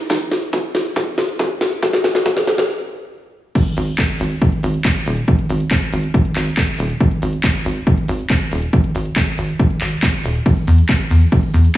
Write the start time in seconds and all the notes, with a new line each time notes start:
0.10 kick, snare, closed hi-hat, shaker
0.21 closed hi-hat, shaker
0.31 snare, open hi-hat, shaker
0.42 closed hi-hat, shaker
0.53 kick, snare, closed hi-hat, shaker
0.64 closed hi-hat
0.75 snare, open hi-hat, shaker
0.85 closed hi-hat, shaker
0.96 kick, snare, closed hi-hat, shaker
1.07 closed hi-hat
1.18 snare, open hi-hat, shaker
1.29 closed hi-hat, shaker
1.39 kick, snare, closed hi-hat, shaker
1.50 closed hi-hat
1.61 snare, open hi-hat, shaker
1.72 closed hi-hat, shaker
1.83 kick, snare, closed hi-hat, shaker
1.93 snare, closed hi-hat, shaker
2.04 snare, open hi-hat, shaker
2.15 snare, closed hi-hat, shaker
2.26 kick, snare, closed hi-hat, shaker
2.37 snare, closed hi-hat, shaker
2.47 snare, open hi-hat, shaker
2.58 snare, shaker
3.55 kick, closed hi-hat, crash, shaker
3.66 closed hi-hat, shaker
3.77 G#1, open hi-hat, shaker
3.88 closed hi-hat, shaker
3.98 kick, clap, closed hi-hat, shaker
4.09 closed hi-hat
4.20 G#1, open hi-hat, shaker
4.31 closed hi-hat, shaker
4.42 kick, closed hi-hat, shaker
4.52 closed hi-hat
4.63 G#1, open hi-hat, shaker
4.74 closed hi-hat, shaker
4.85 kick, clap, closed hi-hat, shaker
4.95 closed hi-hat
5.06 D#1, open hi-hat, shaker
5.17 closed hi-hat, shaker
5.28 kick, closed hi-hat, shaker
5.39 closed hi-hat, shaker
5.49 G#1, open hi-hat, shaker
5.60 closed hi-hat, shaker
5.71 kick, clap, closed hi-hat, shaker
5.82 closed hi-hat
5.93 G#1, open hi-hat, shaker
6.03 closed hi-hat, shaker
6.14 kick, closed hi-hat, shaker
6.25 closed hi-hat
6.36 G#1, clap, open hi-hat, shaker
6.47 closed hi-hat, shaker
6.57 kick, clap, closed hi-hat, shaker
6.68 closed hi-hat
6.79 D#1, open hi-hat, shaker
6.90 closed hi-hat, shaker
7.00 kick, closed hi-hat, shaker
7.11 closed hi-hat, shaker
7.22 G#1, open hi-hat, shaker
7.33 closed hi-hat, shaker
7.44 kick, clap, closed hi-hat, shaker
7.54 closed hi-hat
7.65 G#1, open hi-hat, shaker
7.76 closed hi-hat, shaker
7.87 kick, closed hi-hat, shaker
7.97 closed hi-hat
8.08 G#1, open hi-hat, shaker
8.19 closed hi-hat, shaker
8.30 kick, clap, closed hi-hat, shaker
8.41 closed hi-hat
8.51 D#1, open hi-hat, shaker
8.62 closed hi-hat, shaker
8.73 kick, closed hi-hat, shaker
8.84 closed hi-hat, shaker
8.95 G#1, open hi-hat, shaker
9.05 closed hi-hat, shaker
9.16 kick, clap, closed hi-hat, shaker
9.27 closed hi-hat
9.38 G#1, open hi-hat, shaker
9.49 closed hi-hat, shaker
9.60 kick, closed hi-hat, shaker
9.70 closed hi-hat
9.81 G#1, clap, open hi-hat, shaker
9.92 closed hi-hat, shaker
10.03 kick, clap, closed hi-hat, shaker
10.13 closed hi-hat
10.24 D#1, open hi-hat, shaker
10.35 closed hi-hat, shaker
10.46 kick, closed hi-hat, ride, shaker
10.57 closed hi-hat, shaker
10.67 E2, open hi-hat, shaker
10.78 closed hi-hat, shaker
10.89 kick, clap, closed hi-hat, ride, shaker
11.00 closed hi-hat
11.11 E2, open hi-hat, shaker
11.21 closed hi-hat, shaker
11.32 kick, closed hi-hat, ride, shaker
11.43 closed hi-hat
11.54 E2, open hi-hat, shaker
11.65 closed hi-hat, shaker